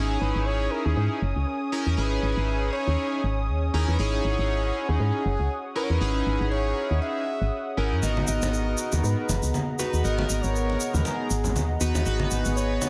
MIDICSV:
0, 0, Header, 1, 7, 480
1, 0, Start_track
1, 0, Tempo, 504202
1, 1882, Time_signature, 4, 2, 24, 8
1, 12275, End_track
2, 0, Start_track
2, 0, Title_t, "Analog synth pad"
2, 0, Program_c, 0, 89
2, 0, Note_on_c, 0, 73, 81
2, 0, Note_on_c, 0, 80, 89
2, 0, Note_on_c, 0, 87, 75
2, 3763, Note_off_c, 0, 80, 0
2, 3804, Note_on_c, 0, 78, 90
2, 7605, Note_off_c, 0, 73, 0
2, 7605, Note_off_c, 0, 87, 0
2, 7642, Note_on_c, 0, 59, 81
2, 7642, Note_on_c, 0, 82, 86
2, 7643, Note_on_c, 0, 75, 71
2, 11444, Note_off_c, 0, 82, 0
2, 11481, Note_on_c, 0, 80, 90
2, 12275, Note_off_c, 0, 59, 0
2, 12275, Note_off_c, 0, 75, 0
2, 12275, Note_off_c, 0, 78, 0
2, 12275, Note_off_c, 0, 80, 0
2, 12275, End_track
3, 0, Start_track
3, 0, Title_t, "Ambient pad"
3, 0, Program_c, 1, 92
3, 0, Note_on_c, 1, 61, 87
3, 0, Note_on_c, 1, 85, 99
3, 424, Note_on_c, 1, 68, 79
3, 1576, Note_off_c, 1, 85, 0
3, 8225, Note_on_c, 1, 75, 89
3, 8527, Note_off_c, 1, 61, 0
3, 12020, Note_on_c, 1, 85, 96
3, 12275, Note_off_c, 1, 68, 0
3, 12275, Note_off_c, 1, 75, 0
3, 12275, Note_off_c, 1, 85, 0
3, 12275, End_track
4, 0, Start_track
4, 0, Title_t, "Muted trumpet"
4, 0, Program_c, 2, 59
4, 0, Note_on_c, 2, 68, 100
4, 185, Note_off_c, 2, 68, 0
4, 203, Note_on_c, 2, 71, 100
4, 444, Note_on_c, 2, 73, 113
4, 458, Note_off_c, 2, 71, 0
4, 681, Note_on_c, 2, 70, 102
4, 695, Note_off_c, 2, 73, 0
4, 819, Note_on_c, 2, 68, 90
4, 833, Note_off_c, 2, 70, 0
4, 1298, Note_off_c, 2, 68, 0
4, 1883, Note_on_c, 2, 71, 105
4, 2564, Note_off_c, 2, 71, 0
4, 2599, Note_on_c, 2, 73, 124
4, 3282, Note_off_c, 2, 73, 0
4, 3565, Note_on_c, 2, 68, 84
4, 3701, Note_on_c, 2, 71, 91
4, 3715, Note_off_c, 2, 68, 0
4, 3804, Note_on_c, 2, 73, 110
4, 3818, Note_off_c, 2, 71, 0
4, 4659, Note_on_c, 2, 68, 98
4, 4673, Note_off_c, 2, 73, 0
4, 5378, Note_off_c, 2, 68, 0
4, 5486, Note_on_c, 2, 71, 104
4, 5560, Note_on_c, 2, 73, 90
4, 5574, Note_off_c, 2, 71, 0
4, 5633, Note_on_c, 2, 71, 109
4, 5647, Note_off_c, 2, 73, 0
4, 6198, Note_off_c, 2, 71, 0
4, 6204, Note_on_c, 2, 73, 110
4, 6649, Note_off_c, 2, 73, 0
4, 6684, Note_on_c, 2, 76, 111
4, 7365, Note_off_c, 2, 76, 0
4, 7645, Note_on_c, 2, 75, 114
4, 7867, Note_off_c, 2, 75, 0
4, 7883, Note_on_c, 2, 75, 124
4, 8564, Note_off_c, 2, 75, 0
4, 8607, Note_on_c, 2, 71, 89
4, 9286, Note_off_c, 2, 71, 0
4, 9561, Note_on_c, 2, 75, 122
4, 9936, Note_on_c, 2, 73, 112
4, 9951, Note_off_c, 2, 75, 0
4, 10417, Note_on_c, 2, 71, 97
4, 10432, Note_off_c, 2, 73, 0
4, 10524, Note_on_c, 2, 68, 91
4, 10538, Note_off_c, 2, 71, 0
4, 11243, Note_off_c, 2, 68, 0
4, 11960, Note_on_c, 2, 73, 119
4, 12275, Note_off_c, 2, 73, 0
4, 12275, End_track
5, 0, Start_track
5, 0, Title_t, "Analog polysynth"
5, 0, Program_c, 3, 90
5, 0, Note_on_c, 3, 61, 78
5, 0, Note_on_c, 3, 63, 72
5, 0, Note_on_c, 3, 64, 74
5, 0, Note_on_c, 3, 68, 86
5, 1134, Note_off_c, 3, 61, 0
5, 1135, Note_off_c, 3, 63, 0
5, 1137, Note_off_c, 3, 64, 0
5, 1138, Note_off_c, 3, 68, 0
5, 1639, Note_on_c, 3, 61, 76
5, 1640, Note_on_c, 3, 63, 68
5, 1642, Note_on_c, 3, 64, 70
5, 1644, Note_on_c, 3, 70, 84
5, 1855, Note_off_c, 3, 61, 0
5, 1856, Note_off_c, 3, 63, 0
5, 1857, Note_off_c, 3, 64, 0
5, 1858, Note_off_c, 3, 70, 0
5, 1877, Note_on_c, 3, 61, 78
5, 1879, Note_on_c, 3, 63, 71
5, 1882, Note_on_c, 3, 64, 70
5, 1886, Note_on_c, 3, 68, 85
5, 3054, Note_off_c, 3, 61, 0
5, 3055, Note_off_c, 3, 63, 0
5, 3057, Note_off_c, 3, 64, 0
5, 3058, Note_off_c, 3, 68, 0
5, 3558, Note_on_c, 3, 61, 74
5, 3559, Note_on_c, 3, 63, 69
5, 3561, Note_on_c, 3, 64, 72
5, 3563, Note_on_c, 3, 70, 83
5, 3775, Note_off_c, 3, 61, 0
5, 3775, Note_off_c, 3, 63, 0
5, 3776, Note_off_c, 3, 64, 0
5, 3777, Note_off_c, 3, 70, 0
5, 3796, Note_on_c, 3, 61, 79
5, 3799, Note_on_c, 3, 63, 72
5, 3802, Note_on_c, 3, 64, 69
5, 3805, Note_on_c, 3, 68, 89
5, 4973, Note_off_c, 3, 61, 0
5, 4975, Note_off_c, 3, 63, 0
5, 4976, Note_off_c, 3, 64, 0
5, 4978, Note_off_c, 3, 68, 0
5, 5479, Note_on_c, 3, 61, 76
5, 5480, Note_on_c, 3, 63, 71
5, 5482, Note_on_c, 3, 64, 70
5, 5483, Note_on_c, 3, 70, 84
5, 5695, Note_off_c, 3, 61, 0
5, 5696, Note_off_c, 3, 63, 0
5, 5697, Note_off_c, 3, 64, 0
5, 5697, Note_off_c, 3, 70, 0
5, 5717, Note_on_c, 3, 61, 79
5, 5720, Note_on_c, 3, 63, 73
5, 5723, Note_on_c, 3, 64, 71
5, 5726, Note_on_c, 3, 68, 88
5, 6894, Note_off_c, 3, 61, 0
5, 6896, Note_off_c, 3, 63, 0
5, 6897, Note_off_c, 3, 64, 0
5, 6899, Note_off_c, 3, 68, 0
5, 7399, Note_on_c, 3, 61, 79
5, 7400, Note_on_c, 3, 63, 71
5, 7402, Note_on_c, 3, 64, 69
5, 7404, Note_on_c, 3, 70, 82
5, 7615, Note_off_c, 3, 61, 0
5, 7616, Note_off_c, 3, 63, 0
5, 7617, Note_off_c, 3, 64, 0
5, 7618, Note_off_c, 3, 70, 0
5, 7637, Note_on_c, 3, 59, 78
5, 7640, Note_on_c, 3, 63, 73
5, 7643, Note_on_c, 3, 66, 71
5, 7647, Note_on_c, 3, 70, 86
5, 8814, Note_off_c, 3, 59, 0
5, 8816, Note_off_c, 3, 63, 0
5, 8817, Note_off_c, 3, 66, 0
5, 8819, Note_off_c, 3, 70, 0
5, 9320, Note_on_c, 3, 59, 78
5, 9322, Note_on_c, 3, 63, 72
5, 9323, Note_on_c, 3, 66, 71
5, 9324, Note_on_c, 3, 71, 86
5, 9536, Note_off_c, 3, 59, 0
5, 9537, Note_off_c, 3, 63, 0
5, 9537, Note_off_c, 3, 66, 0
5, 9538, Note_off_c, 3, 71, 0
5, 9557, Note_on_c, 3, 59, 76
5, 9560, Note_on_c, 3, 63, 69
5, 9564, Note_on_c, 3, 66, 70
5, 9567, Note_on_c, 3, 70, 87
5, 10734, Note_off_c, 3, 59, 0
5, 10736, Note_off_c, 3, 63, 0
5, 10738, Note_off_c, 3, 66, 0
5, 10739, Note_off_c, 3, 70, 0
5, 11239, Note_on_c, 3, 59, 80
5, 11240, Note_on_c, 3, 63, 73
5, 11242, Note_on_c, 3, 66, 69
5, 11243, Note_on_c, 3, 71, 84
5, 11455, Note_off_c, 3, 59, 0
5, 11456, Note_off_c, 3, 63, 0
5, 11457, Note_off_c, 3, 66, 0
5, 11457, Note_off_c, 3, 71, 0
5, 11476, Note_on_c, 3, 59, 77
5, 11479, Note_on_c, 3, 63, 75
5, 11482, Note_on_c, 3, 66, 71
5, 11485, Note_on_c, 3, 71, 88
5, 12275, Note_off_c, 3, 59, 0
5, 12275, Note_off_c, 3, 63, 0
5, 12275, Note_off_c, 3, 66, 0
5, 12275, Note_off_c, 3, 71, 0
5, 12275, End_track
6, 0, Start_track
6, 0, Title_t, "FM bass"
6, 0, Program_c, 4, 39
6, 0, Note_on_c, 4, 32, 102
6, 161, Note_off_c, 4, 32, 0
6, 202, Note_on_c, 4, 32, 89
6, 310, Note_off_c, 4, 32, 0
6, 336, Note_on_c, 4, 32, 89
6, 649, Note_off_c, 4, 32, 0
6, 816, Note_on_c, 4, 39, 98
6, 901, Note_off_c, 4, 39, 0
6, 920, Note_on_c, 4, 44, 104
6, 1030, Note_off_c, 4, 44, 0
6, 1160, Note_on_c, 4, 30, 109
6, 1269, Note_off_c, 4, 30, 0
6, 1295, Note_on_c, 4, 37, 84
6, 1381, Note_off_c, 4, 37, 0
6, 1775, Note_on_c, 4, 40, 84
6, 1860, Note_off_c, 4, 40, 0
6, 1880, Note_on_c, 4, 32, 101
6, 2080, Note_off_c, 4, 32, 0
6, 2120, Note_on_c, 4, 32, 87
6, 2229, Note_off_c, 4, 32, 0
6, 2256, Note_on_c, 4, 32, 92
6, 2569, Note_off_c, 4, 32, 0
6, 2736, Note_on_c, 4, 39, 99
6, 2821, Note_off_c, 4, 39, 0
6, 3081, Note_on_c, 4, 32, 97
6, 3320, Note_on_c, 4, 39, 98
6, 3334, Note_off_c, 4, 32, 0
6, 3520, Note_off_c, 4, 39, 0
6, 3560, Note_on_c, 4, 39, 91
6, 3669, Note_off_c, 4, 39, 0
6, 3695, Note_on_c, 4, 40, 96
6, 3780, Note_off_c, 4, 40, 0
6, 3800, Note_on_c, 4, 32, 105
6, 4000, Note_off_c, 4, 32, 0
6, 4040, Note_on_c, 4, 32, 89
6, 4149, Note_off_c, 4, 32, 0
6, 4174, Note_on_c, 4, 32, 90
6, 4488, Note_off_c, 4, 32, 0
6, 4654, Note_on_c, 4, 39, 96
6, 4740, Note_off_c, 4, 39, 0
6, 4760, Note_on_c, 4, 44, 105
6, 4869, Note_off_c, 4, 44, 0
6, 5001, Note_on_c, 4, 30, 105
6, 5110, Note_off_c, 4, 30, 0
6, 5135, Note_on_c, 4, 37, 84
6, 5221, Note_off_c, 4, 37, 0
6, 5616, Note_on_c, 4, 40, 83
6, 5701, Note_off_c, 4, 40, 0
6, 5720, Note_on_c, 4, 32, 102
6, 5920, Note_off_c, 4, 32, 0
6, 5962, Note_on_c, 4, 32, 91
6, 6070, Note_off_c, 4, 32, 0
6, 6096, Note_on_c, 4, 32, 90
6, 6409, Note_off_c, 4, 32, 0
6, 6576, Note_on_c, 4, 39, 94
6, 6661, Note_off_c, 4, 39, 0
6, 7056, Note_on_c, 4, 32, 88
6, 7141, Note_off_c, 4, 32, 0
6, 7401, Note_on_c, 4, 32, 84
6, 7536, Note_on_c, 4, 42, 85
6, 7551, Note_off_c, 4, 32, 0
6, 7621, Note_off_c, 4, 42, 0
6, 7641, Note_on_c, 4, 32, 100
6, 7840, Note_off_c, 4, 32, 0
6, 7882, Note_on_c, 4, 32, 89
6, 7990, Note_off_c, 4, 32, 0
6, 8016, Note_on_c, 4, 32, 90
6, 8329, Note_off_c, 4, 32, 0
6, 8498, Note_on_c, 4, 39, 99
6, 8582, Note_off_c, 4, 39, 0
6, 8602, Note_on_c, 4, 44, 105
6, 8711, Note_off_c, 4, 44, 0
6, 8844, Note_on_c, 4, 30, 108
6, 8951, Note_off_c, 4, 30, 0
6, 8977, Note_on_c, 4, 37, 84
6, 9062, Note_off_c, 4, 37, 0
6, 9457, Note_on_c, 4, 39, 84
6, 9542, Note_off_c, 4, 39, 0
6, 9562, Note_on_c, 4, 32, 103
6, 9761, Note_off_c, 4, 32, 0
6, 9802, Note_on_c, 4, 32, 91
6, 9911, Note_off_c, 4, 32, 0
6, 9937, Note_on_c, 4, 32, 95
6, 10249, Note_off_c, 4, 32, 0
6, 10416, Note_on_c, 4, 39, 102
6, 10501, Note_off_c, 4, 39, 0
6, 10761, Note_on_c, 4, 32, 99
6, 11001, Note_on_c, 4, 39, 97
6, 11015, Note_off_c, 4, 32, 0
6, 11200, Note_off_c, 4, 39, 0
6, 11240, Note_on_c, 4, 39, 95
6, 11350, Note_off_c, 4, 39, 0
6, 11376, Note_on_c, 4, 39, 97
6, 11461, Note_off_c, 4, 39, 0
6, 11481, Note_on_c, 4, 32, 101
6, 11680, Note_off_c, 4, 32, 0
6, 11721, Note_on_c, 4, 32, 94
6, 11830, Note_off_c, 4, 32, 0
6, 11857, Note_on_c, 4, 32, 93
6, 12169, Note_off_c, 4, 32, 0
6, 12275, End_track
7, 0, Start_track
7, 0, Title_t, "Drums"
7, 7642, Note_on_c, 9, 82, 40
7, 7643, Note_on_c, 9, 62, 50
7, 7738, Note_off_c, 9, 62, 0
7, 7738, Note_off_c, 9, 82, 0
7, 7778, Note_on_c, 9, 63, 94
7, 7873, Note_off_c, 9, 63, 0
7, 7878, Note_on_c, 9, 82, 100
7, 7973, Note_off_c, 9, 82, 0
7, 8016, Note_on_c, 9, 82, 58
7, 8024, Note_on_c, 9, 62, 79
7, 8111, Note_off_c, 9, 82, 0
7, 8119, Note_off_c, 9, 62, 0
7, 8126, Note_on_c, 9, 82, 37
7, 8221, Note_off_c, 9, 82, 0
7, 8356, Note_on_c, 9, 82, 84
7, 8451, Note_off_c, 9, 82, 0
7, 8493, Note_on_c, 9, 82, 54
7, 8495, Note_on_c, 9, 62, 55
7, 8504, Note_on_c, 9, 63, 71
7, 8588, Note_off_c, 9, 82, 0
7, 8590, Note_off_c, 9, 62, 0
7, 8599, Note_off_c, 9, 63, 0
7, 8607, Note_on_c, 9, 82, 39
7, 8703, Note_off_c, 9, 82, 0
7, 8845, Note_on_c, 9, 62, 76
7, 8846, Note_on_c, 9, 64, 79
7, 8848, Note_on_c, 9, 82, 97
7, 8940, Note_off_c, 9, 62, 0
7, 8942, Note_off_c, 9, 64, 0
7, 8943, Note_off_c, 9, 82, 0
7, 8973, Note_on_c, 9, 82, 54
7, 9068, Note_off_c, 9, 82, 0
7, 9084, Note_on_c, 9, 63, 89
7, 9086, Note_on_c, 9, 82, 39
7, 9179, Note_off_c, 9, 63, 0
7, 9181, Note_off_c, 9, 82, 0
7, 9322, Note_on_c, 9, 82, 97
7, 9323, Note_on_c, 9, 62, 59
7, 9418, Note_off_c, 9, 62, 0
7, 9418, Note_off_c, 9, 82, 0
7, 9457, Note_on_c, 9, 82, 50
7, 9553, Note_off_c, 9, 82, 0
7, 9565, Note_on_c, 9, 82, 40
7, 9660, Note_off_c, 9, 82, 0
7, 9691, Note_on_c, 9, 63, 89
7, 9697, Note_on_c, 9, 62, 85
7, 9786, Note_off_c, 9, 63, 0
7, 9792, Note_off_c, 9, 62, 0
7, 9802, Note_on_c, 9, 82, 100
7, 9897, Note_off_c, 9, 82, 0
7, 9933, Note_on_c, 9, 82, 55
7, 10028, Note_off_c, 9, 82, 0
7, 10048, Note_on_c, 9, 82, 42
7, 10143, Note_off_c, 9, 82, 0
7, 10183, Note_on_c, 9, 62, 52
7, 10278, Note_off_c, 9, 62, 0
7, 10285, Note_on_c, 9, 82, 90
7, 10380, Note_off_c, 9, 82, 0
7, 10416, Note_on_c, 9, 63, 73
7, 10418, Note_on_c, 9, 82, 52
7, 10420, Note_on_c, 9, 64, 86
7, 10511, Note_off_c, 9, 63, 0
7, 10514, Note_off_c, 9, 82, 0
7, 10515, Note_off_c, 9, 64, 0
7, 10520, Note_on_c, 9, 62, 78
7, 10528, Note_on_c, 9, 82, 39
7, 10616, Note_off_c, 9, 62, 0
7, 10623, Note_off_c, 9, 82, 0
7, 10761, Note_on_c, 9, 82, 95
7, 10856, Note_off_c, 9, 82, 0
7, 10891, Note_on_c, 9, 64, 92
7, 10896, Note_on_c, 9, 82, 50
7, 10986, Note_off_c, 9, 64, 0
7, 10991, Note_off_c, 9, 82, 0
7, 11002, Note_on_c, 9, 63, 95
7, 11006, Note_on_c, 9, 82, 42
7, 11007, Note_on_c, 9, 62, 54
7, 11097, Note_off_c, 9, 63, 0
7, 11101, Note_off_c, 9, 82, 0
7, 11102, Note_off_c, 9, 62, 0
7, 11242, Note_on_c, 9, 82, 104
7, 11338, Note_off_c, 9, 82, 0
7, 11377, Note_on_c, 9, 62, 79
7, 11377, Note_on_c, 9, 82, 55
7, 11472, Note_off_c, 9, 82, 0
7, 11473, Note_off_c, 9, 62, 0
7, 11478, Note_on_c, 9, 82, 40
7, 11574, Note_off_c, 9, 82, 0
7, 11610, Note_on_c, 9, 63, 109
7, 11705, Note_off_c, 9, 63, 0
7, 11717, Note_on_c, 9, 82, 94
7, 11813, Note_off_c, 9, 82, 0
7, 11852, Note_on_c, 9, 82, 58
7, 11864, Note_on_c, 9, 62, 51
7, 11947, Note_off_c, 9, 82, 0
7, 11959, Note_off_c, 9, 62, 0
7, 11968, Note_on_c, 9, 82, 44
7, 12063, Note_off_c, 9, 82, 0
7, 12200, Note_on_c, 9, 62, 84
7, 12202, Note_on_c, 9, 82, 103
7, 12275, Note_off_c, 9, 62, 0
7, 12275, Note_off_c, 9, 82, 0
7, 12275, End_track
0, 0, End_of_file